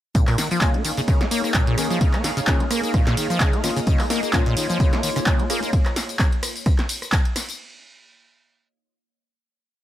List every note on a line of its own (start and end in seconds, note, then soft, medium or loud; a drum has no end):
0.15 0.26 A#2 medium
0.15 5.73 A#3 medium
0.15 kick loud
0.15 closed hi-hat medium
0.15 tambourine soft
0.27 0.36 A#2 loud
0.27 5.73 D#4 medium
0.27 cross-stick medium
0.27 clap soft
0.27 open hi-hat medium
0.38 0.49 D#3 medium
0.38 snare medium
0.38 open hi-hat loud
0.38 ride medium
0.38 tambourine medium
0.50 0.60 F3 loud
0.50 5.73 F5 medium
0.50 closed hi-hat soft
0.50 tambourine soft
0.61 0.76 C#3 medium
0.61 0.75 A#3 medium
0.61 0.75 C#4 medium
0.61 0.75 F4 medium
0.61 3.30 C#5 medium
0.61 kick loud
0.61 cross-stick soft
0.61 clap loud
0.61 closed hi-hat medium
0.61 tambourine soft
0.74 0.83 A#3 medium
0.74 5.73 G#4 medium
0.74 closed hi-hat soft
0.85 0.92 D#3 medium
0.85 open hi-hat loud
0.85 ride medium
0.85 tambourine medium
0.97 1.01 C#3 loud
0.97 closed hi-hat soft
0.97 tambourine soft
1.08 1.22 C#3 medium
1.08 kick loud
1.08 cross-stick medium
1.08 closed hi-hat medium
1.08 tambourine soft
1.21 1.27 A#3 medium
1.21 snare medium
1.21 closed hi-hat soft
1.31 1.42 A#3 loud
1.31 open hi-hat loud
1.31 ride medium
1.31 tambourine medium
1.44 1.53 A#3 medium
1.44 cross-stick soft
1.44 closed hi-hat soft
1.44 tambourine soft
1.54 1.65 A#2 medium
1.54 kick loud
1.54 clap loud
1.54 closed hi-hat medium
1.54 tambourine soft
1.67 1.76 A#2 loud
1.67 closed hi-hat soft
1.78 1.88 D#3 medium
1.78 1.92 A#3 medium
1.78 1.92 C#4 medium
1.78 1.92 G#4 medium
1.78 cross-stick medium
1.78 open hi-hat loud
1.78 ride medium
1.78 tambourine medium
1.90 1.99 F3 loud
1.90 closed hi-hat soft
1.90 tambourine soft
2.01 2.15 C#3 medium
2.01 kick loud
2.01 closed hi-hat medium
2.01 tambourine soft
2.13 2.22 A#3 medium
2.13 cross-stick medium
2.13 clap soft
2.13 closed hi-hat soft
2.24 2.31 D#3 medium
2.24 snare medium
2.24 open hi-hat loud
2.24 ride medium
2.24 tambourine medium
2.37 2.40 C#3 loud
2.37 closed hi-hat soft
2.37 tambourine soft
2.47 2.62 C#3 medium
2.47 2.61 A#3 medium
2.47 2.61 C#4 medium
2.47 2.61 F4 loud
2.47 kick loud
2.47 cross-stick soft
2.47 snare medium
2.47 clap loud
2.47 closed hi-hat medium
2.47 tambourine soft
2.60 2.66 A#3 medium
2.60 closed hi-hat soft
2.71 2.81 A#3 loud
2.71 cross-stick medium
2.71 open hi-hat loud
2.71 ride medium
2.71 tambourine medium
2.83 2.92 A#3 medium
2.83 closed hi-hat soft
2.83 tambourine soft
2.94 3.05 A#2 medium
2.94 kick loud
2.94 cross-stick medium
2.94 closed hi-hat medium
2.94 tambourine soft
3.06 3.15 A#2 loud
3.06 snare medium
3.06 clap soft
3.06 closed hi-hat soft
3.16 3.28 D#3 medium
3.16 5.73 D#5 medium
3.16 open hi-hat loud
3.16 ride medium
3.16 tambourine medium
3.30 3.39 F3 loud
3.30 cross-stick soft
3.30 closed hi-hat soft
3.30 tambourine soft
3.40 3.55 C#3 medium
3.40 kick loud
3.40 clap loud
3.40 closed hi-hat medium
3.40 tambourine soft
3.53 3.62 A#3 medium
3.53 closed hi-hat soft
3.64 3.71 D#3 medium
3.64 3.78 A#3 medium
3.64 3.78 C#4 medium
3.64 3.78 F4 medium
3.64 cross-stick medium
3.64 snare soft
3.64 open hi-hat loud
3.64 ride medium
3.64 tambourine medium
3.76 3.80 C#3 loud
3.76 closed hi-hat soft
3.76 tambourine soft
3.87 4.01 C#3 medium
3.87 5.71 A#3 medium
3.87 5.71 F4 medium
3.87 5.71 C#5 medium
3.87 kick loud
3.87 closed hi-hat medium
3.87 tambourine soft
3.99 4.06 A#3 medium
3.99 cross-stick medium
3.99 clap soft
3.99 open hi-hat medium
4.10 4.21 A#3 loud
4.10 snare medium
4.10 open hi-hat loud
4.10 ride medium
4.10 tambourine medium
4.23 4.32 A#3 medium
4.23 closed hi-hat soft
4.23 tambourine soft
4.33 4.44 A#2 medium
4.33 4.47 A#3 medium
4.33 4.47 C#4 medium
4.33 4.47 F4 medium
4.33 kick loud
4.33 cross-stick soft
4.33 clap loud
4.33 closed hi-hat medium
4.33 tambourine soft
4.46 4.55 A#2 loud
4.46 closed hi-hat soft
4.57 4.67 D#3 medium
4.57 open hi-hat loud
4.57 ride medium
4.57 tambourine medium
4.70 4.78 F3 loud
4.70 closed hi-hat soft
4.70 tambourine soft
4.80 4.94 C#3 medium
4.80 kick loud
4.80 cross-stick medium
4.80 closed hi-hat medium
4.80 tambourine soft
4.93 5.01 A#3 medium
4.93 snare medium
4.93 closed hi-hat soft
5.03 5.10 D#3 medium
5.03 open hi-hat loud
5.03 ride medium
5.03 tambourine medium
5.16 5.20 C#3 loud
5.16 cross-stick soft
5.16 closed hi-hat soft
5.16 tambourine soft
5.26 5.41 C#3 medium
5.26 kick loud
5.26 clap loud
5.26 closed hi-hat medium
5.26 tambourine soft
5.39 5.45 A#3 medium
5.39 closed hi-hat soft
5.50 5.64 A#3 medium
5.50 5.60 A#3 loud
5.50 5.64 C#4 medium
5.50 5.64 G#4 medium
5.50 cross-stick medium
5.50 open hi-hat loud
5.50 ride medium
5.50 tambourine medium
5.63 5.71 A#3 medium
5.63 closed hi-hat soft
5.63 tambourine soft
5.73 kick loud
5.73 closed hi-hat medium
5.73 tambourine soft
5.86 cross-stick medium
5.86 clap soft
5.86 closed hi-hat soft
5.96 snare medium
5.96 open hi-hat loud
5.96 ride medium
5.96 tambourine medium
6.09 closed hi-hat soft
6.09 tambourine soft
6.19 kick loud
6.19 cross-stick soft
6.19 snare medium
6.19 clap loud
6.19 closed hi-hat medium
6.19 tambourine soft
6.32 closed hi-hat soft
6.43 cross-stick medium
6.43 open hi-hat loud
6.43 ride medium
6.43 tambourine medium
6.56 closed hi-hat soft
6.56 tambourine soft
6.66 kick loud
6.66 cross-stick medium
6.66 closed hi-hat medium
6.66 tambourine soft
6.78 snare medium
6.78 clap soft
6.78 closed hi-hat soft
6.89 open hi-hat loud
6.89 ride medium
6.89 tambourine medium
7.02 cross-stick soft
7.02 closed hi-hat soft
7.02 tambourine soft
7.12 kick loud
7.12 clap loud
7.12 closed hi-hat medium
7.12 tambourine soft
7.25 closed hi-hat soft
7.36 cross-stick medium
7.36 snare soft
7.36 open hi-hat loud
7.36 ride medium
7.36 tambourine medium
7.49 closed hi-hat soft
7.49 tambourine soft